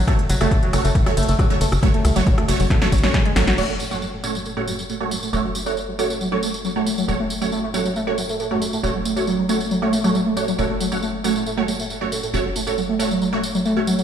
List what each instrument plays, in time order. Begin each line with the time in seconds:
0.08 synth stab A3 F#4 C#5, analog synth lead A3, kick, cross-stick, closed hi-hat, tambourine
0.19 closed hi-hat
0.29 analog synth bass F#1, analog synth lead F#3, open hi-hat, ride, tambourine
0.41 analog synth bass F#1, synth stab A3 F#4 C#5, analog synth lead A3, cross-stick, closed hi-hat, tambourine
0.51 analog synth lead A3, kick, closed hi-hat, tambourine
0.63 analog synth lead F#3, closed hi-hat
0.73 analog synth bass F#1, analog synth lead F#3, synth stab A3 F#4 C#5, cross-stick, open hi-hat, ride, tambourine
0.85 analog synth bass F#1, analog synth lead A3, closed hi-hat, tambourine
0.95 kick, closed hi-hat, tambourine
1.06 analog synth lead F#3, synth stab A3 F#4 C#5, cross-stick, closed hi-hat
1.17 analog synth bass F#1, analog synth lead A3, open hi-hat, ride, tambourine
1.23 closed hi-hat
1.28 analog synth bass F#1, analog synth lead A3, closed hi-hat, tambourine
1.39 analog synth lead F#3, kick, cross-stick, closed hi-hat, tambourine
1.50 analog synth lead F#3, synth stab A3 F#4 C#5, closed hi-hat
1.61 analog synth bass F#1, analog synth lead A3, open hi-hat, ride, tambourine
1.72 analog synth bass F#1, cross-stick, closed hi-hat, tambourine
1.83 analog synth lead F#3, synth stab A3 F#4 C#5, kick, closed hi-hat
1.94 analog synth lead A3, closed hi-hat
2.05 analog synth bass C#2, analog synth lead A3, cross-stick, open hi-hat, ride, tambourine
2.16 analog synth bass F#1, analog synth lead F#3, synth stab A3 F#4 C#5, closed hi-hat, tambourine
2.27 analog synth lead F#3, kick, closed hi-hat, tambourine
2.38 analog synth lead A3, cross-stick, closed hi-hat
2.48 analog synth bass F#1, synth stab A3 F#4 C#5, open hi-hat, ride, tambourine
2.60 analog synth bass F#1, analog synth lead F#3, closed hi-hat, tambourine
2.70 analog synth lead A3, kick, snare, closed hi-hat
2.82 synth stab A3 F#4 C#5, analog synth lead A3, snare, closed hi-hat
2.92 analog synth bass A1, analog synth lead F#3, kick, open hi-hat, ride, tambourine
2.98 closed hi-hat
3.04 analog synth bass A1, synth stab A3 F#4 C#5, analog synth lead C#4, snare, closed hi-hat, tambourine
3.14 analog synth lead G#3, kick, snare, closed hi-hat, tambourine
3.25 analog synth lead G#3, closed hi-hat
3.36 analog synth bass A1, analog synth lead F#3, synth stab A3 F#4 C#5, snare, open hi-hat, ride, tambourine
3.47 analog synth bass A1, analog synth lead F#4, snare, closed hi-hat, tambourine
3.58 analog synth bass F#1, analog synth lead F#3, synth stab A3 F#4 C#5, crash, tambourine
3.69 analog synth lead A3
3.80 analog synth lead A3, tambourine
3.91 analog synth lead F#3, synth stab A3 F#4 C#5, tambourine
4.02 analog synth lead F#3, tambourine
4.13 analog synth lead A3
4.24 synth stab A3 F#4 C#5, tambourine
4.35 analog synth lead F#3, tambourine
4.46 analog synth lead A3, tambourine
4.57 synth stab A3 F#4 C#5, analog synth lead A3
4.67 analog synth lead F#3, tambourine
4.79 analog synth lead F#3, tambourine
4.89 analog synth lead A3, tambourine
5.01 synth stab A3 F#4 C#5
5.11 analog synth lead F#3, tambourine
5.23 analog synth lead A3, tambourine
5.33 analog synth bass F#1, synth stab A3 F#4 C#5, analog synth lead A3, tambourine
5.44 analog synth lead F#3
5.55 analog synth lead F#3, tambourine
5.66 synth stab A3 F#4 C#5, analog synth lead A3, tambourine
5.77 tambourine
5.88 analog synth lead F#3
5.99 analog synth lead A3, synth stab A3 F#4 C#5, tambourine
6.10 analog synth lead A3, tambourine
6.21 analog synth lead F#3, tambourine
6.32 analog synth lead F#3, synth stab A3 F#4 C#5
6.43 analog synth lead A3, tambourine
6.54 tambourine
6.64 analog synth lead F#3, tambourine
6.76 analog synth lead A3, synth stab A3 F#4 C#5
6.86 analog synth lead A3, tambourine
6.98 analog synth lead F#3, tambourine
7.08 analog synth bass F#1, analog synth lead F#3, synth stab A3 F#4 C#5, tambourine
7.20 analog synth lead A3
7.30 tambourine
7.41 analog synth lead F#3, synth stab A3 F#4 C#5, tambourine
7.52 analog synth lead A3, tambourine
7.63 analog synth lead A3
7.74 analog synth lead F#3, synth stab A3 F#4 C#5, tambourine
7.85 analog synth lead F#3, tambourine
7.96 analog synth lead A3, tambourine
8.07 synth stab A3 F#4 C#5
8.18 analog synth lead F#3, tambourine
8.29 analog synth lead A3, tambourine
8.40 analog synth lead A3, tambourine
8.51 analog synth lead F#3, synth stab A3 F#4 C#5
8.62 analog synth lead F#3, tambourine
8.73 analog synth lead A3, tambourine
8.83 analog synth bass F#1, synth stab A3 F#4 C#5, tambourine
8.95 analog synth lead F#3
9.05 analog synth lead A3, tambourine
9.16 synth stab A3 F#4 C#5, analog synth lead A3, tambourine
9.27 analog synth lead F#3, tambourine
9.39 analog synth lead F#3
9.49 synth stab A3 F#4 C#5, analog synth lead A3, tambourine
9.60 tambourine
9.71 analog synth lead F#3, tambourine
9.82 synth stab A3 F#4 C#5, analog synth lead A3
9.93 analog synth lead A3, tambourine
10.04 analog synth lead F#3, synth stab A3 F#4 C#5, tambourine
10.15 analog synth lead F#3, tambourine
10.26 analog synth lead A3
10.37 synth stab A3 F#4 C#5, tambourine
10.48 analog synth lead F#3, tambourine
10.59 analog synth bass F#1, synth stab A3 F#4 C#5, analog synth lead A3, tambourine
10.70 analog synth lead A3
10.80 analog synth lead F#3, tambourine
10.92 analog synth lead F#3, synth stab A3 F#4 C#5, tambourine
11.02 analog synth lead A3, tambourine
11.24 analog synth lead F#3, synth stab A3 F#4 C#5, tambourine
11.36 analog synth lead A3, tambourine
11.46 analog synth lead A3, tambourine
11.57 analog synth lead F#3, synth stab A3 F#4 C#5
11.68 analog synth lead F#3, tambourine
11.79 analog synth lead A3, tambourine
11.90 tambourine
12.01 analog synth lead F#3, synth stab A3 F#4 C#5
12.12 analog synth lead A3, tambourine
12.23 analog synth lead A3, tambourine
12.34 analog synth bass F#1, analog synth lead F#3, synth stab A3 F#4 C#5, tambourine
12.45 analog synth lead F#3
12.56 analog synth lead A3, tambourine
12.67 synth stab A3 F#4 C#5, tambourine
12.78 analog synth lead F#3, tambourine
12.89 analog synth lead A3
12.99 synth stab A3 F#4 C#5, analog synth lead A3, tambourine
13.11 analog synth lead F#3, tambourine
13.21 analog synth lead F#3, tambourine
13.33 synth stab A3 F#4 C#5, analog synth lead A3
13.43 tambourine
13.55 analog synth lead F#3, tambourine
13.65 analog synth lead A3, tambourine
13.77 analog synth lead A3, synth stab A3 F#4 C#5
13.87 analog synth lead F#3, tambourine
13.98 analog synth lead F#3, tambourine